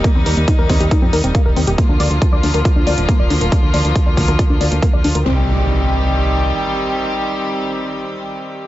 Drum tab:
HH |x-oxx-oxx-oxx-ox|x-oxx-oxx-oxx-ox|x-oxx-oxx-oxx-ox|----------------|
BD |o---o-o-o---o---|o---o---o---o---|o---o-o-o---o---|----------------|

HH |----------------|
BD |----------------|